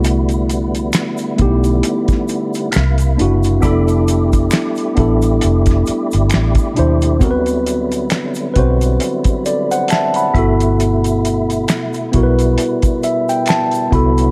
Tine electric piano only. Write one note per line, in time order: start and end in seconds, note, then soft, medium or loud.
0.00 1.28 A3 medium
0.00 1.29 B3 medium
0.00 1.29 E4 medium
0.00 1.30 F#4 medium
1.37 2.72 A3 medium
1.37 2.73 B3 medium
1.37 1.47 D#4 medium
1.42 2.75 G4 loud
1.46 2.77 E4 medium
3.17 3.60 A#3 medium
3.17 3.60 D4 medium
3.17 3.61 E4 medium
3.21 3.62 F#4 medium
3.61 4.89 B3 medium
3.61 4.89 D4 medium
3.61 4.90 E4 medium
3.65 4.91 A4 loud
4.95 6.65 B3 medium
4.95 6.66 D4 medium
4.95 6.67 E4 medium
5.00 6.68 A4 medium
6.74 7.17 B2 medium
6.74 7.18 D4 medium
6.74 7.19 E4 medium
6.79 7.20 C5 medium
7.19 8.47 B3 medium
7.19 8.48 C4 medium
7.19 8.49 F#4 medium
7.24 7.30 A#4 medium
7.31 8.53 B4 medium
8.54 10.25 C4 medium
8.54 10.25 F#4 medium
8.54 10.24 B4 medium
8.59 9.47 C5 medium
9.46 9.70 A4 medium
9.46 9.70 D5 medium
9.71 9.90 C5 medium
9.71 9.89 F#5 medium
9.91 10.15 E5 medium
9.91 10.14 A5 medium
10.16 10.58 F#5 medium
10.16 10.58 B5 medium
10.34 12.03 B3 medium
10.34 12.04 E4 medium
10.34 12.05 F#4 medium
10.38 12.06 A4 medium
12.12 13.82 B3 medium
12.12 13.83 E4 medium
12.12 13.84 F#4 medium
12.17 12.23 A#4 medium
12.23 13.88 B4 medium
13.04 13.27 E5 medium
13.29 13.47 G5 medium
13.49 13.90 A5 medium
13.91 14.31 B3 medium
13.91 14.31 E4 medium
13.91 14.31 F#4 medium
13.91 14.31 B5 medium
13.95 14.31 A4 loud